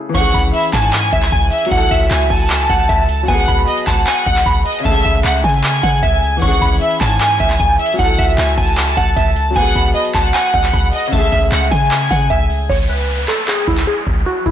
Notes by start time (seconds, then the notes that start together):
Already playing: C#3 A3 G#4
0.09 E3
0.15 C#2 C#4 F#5 C#6, kick, closed hi-hat, crash
0.20 G#4
0.34 C#2 B5, kick, closed hi-hat
0.54 E5, closed hi-hat
0.64 closed hi-hat
0.73 G#2 G#5 A5, kick, clap, closed hi-hat
0.93 G#5, clap, closed hi-hat
1.13 C#2 E5, kick, closed hi-hat
1.23 clap
1.32 C#2 G#5, kick, closed hi-hat
1.52 E5, closed hi-hat
1.58 closed hi-hat
1.65 F#3, closed hi-hat
1.71 C#2 E4 F#5, kick, closed hi-hat
1.77 A4
1.91 C#2 E5, kick, closed hi-hat
2.11 C#2 G#5, clap, closed hi-hat
2.30 C#2 G#5 A5, kick, closed hi-hat, open hi-hat
2.40 closed hi-hat
2.50 clap, closed hi-hat
2.70 C#2 F#5, kick, closed hi-hat
2.89 C#2 E5, kick, closed hi-hat
3.09 closed hi-hat
3.23 F#3
3.28 C#2 B3 F#5 G#5, kick, closed hi-hat
3.34 G#4
3.48 C#2 B5, kick, closed hi-hat
3.68 D#5, closed hi-hat
3.77 closed hi-hat
3.87 C#2 F#5 A5, kick, clap, closed hi-hat
4.07 G#5, clap, closed hi-hat
4.26 C#2 F#5, kick, closed hi-hat
4.36 clap
4.46 C#2 B5, kick, closed hi-hat
4.66 D#5, closed hi-hat
4.72 closed hi-hat
4.79 C#3, closed hi-hat
4.85 C#2 A3 E5 A5, kick, closed hi-hat
4.91 G#4
5.05 C#2 E5, kick, closed hi-hat
5.24 C#2 F#5, clap, closed hi-hat
5.44 C#3 G#5, kick, closed hi-hat
5.49 closed hi-hat
5.54 closed hi-hat
5.59 closed hi-hat
5.64 clap, closed hi-hat
5.83 C#3 F#5, kick, closed hi-hat
6.03 C#2 E5, kick, closed hi-hat
6.23 open hi-hat
6.37 E3
6.42 C#2 C#4 F#5 C#6, kick, closed hi-hat
6.47 G#4
6.62 C#2 B5, kick, closed hi-hat
6.81 E5, closed hi-hat
6.91 closed hi-hat
7.01 G#2 G#5 A5, kick, clap, closed hi-hat
7.20 G#5, clap, closed hi-hat
7.40 C#2 E5, kick, closed hi-hat
7.50 clap
7.60 C#2 G#5, kick, closed hi-hat
7.79 E5, closed hi-hat
7.86 closed hi-hat
7.92 F#3, closed hi-hat
7.99 C#2 E4 F#5, kick, closed hi-hat
8.04 A4
8.18 C#2 E5, kick, closed hi-hat
8.38 C#2 G#5, clap, closed hi-hat
8.58 C#2 G#5 A5, kick, closed hi-hat, open hi-hat
8.68 closed hi-hat
8.77 clap, closed hi-hat
8.97 C#2 F#5, kick, closed hi-hat
9.16 C#2 E5, kick, closed hi-hat
9.36 closed hi-hat
9.50 F#3
9.56 C#2 B3 F#5 G#5, kick, closed hi-hat
9.61 G#4
9.75 C#2 B5, kick, closed hi-hat
9.95 D#5, closed hi-hat
10.05 closed hi-hat
10.15 C#2 F#5 A5, kick, clap, closed hi-hat
10.34 G#5, clap, closed hi-hat
10.54 C#2 F#5, kick, closed hi-hat
10.64 clap
10.73 C#2 B5, kick, closed hi-hat
10.93 D#5, closed hi-hat
11.00 closed hi-hat
11.06 C#3, closed hi-hat
11.13 C#2 A3 E5 A5, kick, closed hi-hat
11.18 G#4
11.32 C#2 E5, kick, closed hi-hat
11.52 C#2 F#5, clap, closed hi-hat
11.71 C#3 G#5, kick, closed hi-hat
11.76 closed hi-hat
11.81 closed hi-hat
11.86 closed hi-hat
11.91 clap, closed hi-hat
12.11 C#3 F#5, kick, closed hi-hat
12.30 C#2 E5, kick, closed hi-hat
12.50 open hi-hat
12.70 C#2 C#5, kick, downlifter
12.89 B4
13.28 A4, clap
13.48 G#4, clap
13.68 C#2 E4, kick
13.78 clap
13.87 G#4
14.07 C#2, kick
14.26 F#4
14.46 C#2 E4, kick